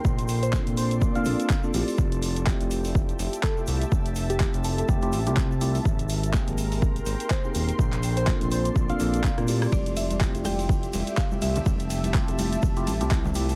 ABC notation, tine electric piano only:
X:1
M:4/4
L:1/16
Q:"Swing 16ths" 1/4=124
K:F
V:1 name="Tine electric piano"
z4 [B,CDFA]4- [B,CDFA] [B,CDFA] [B,CDFA]2 z [B,CDFA] [A,CEFG]2- | [A,CEFG]4 [A,CEFG]8- [A,CEFG] [A,CEFG]3- | [A,CEFG]4 [A,CEFG]4- [A,CEFG] [A,CEFG] z [A,CEFG]2 z [A,CEFG]2 | z4 [B,C_EG_A]8- [B,CEGA] [B,CEGA]3 |
z4 [B,CDFA]4- [B,CDFA] [B,CDFA] [B,CDFA]2 z [B,CDFA] [A,CEFG]2- | [A,CEFG]4 [A,CEFG]8- [A,CEFG] [A,CEFG]3- | [A,CEFG]4 [A,CEFG]4- [A,CEFG] [A,CEFG] z [A,CEFG]2 z [A,CEFG]2 |]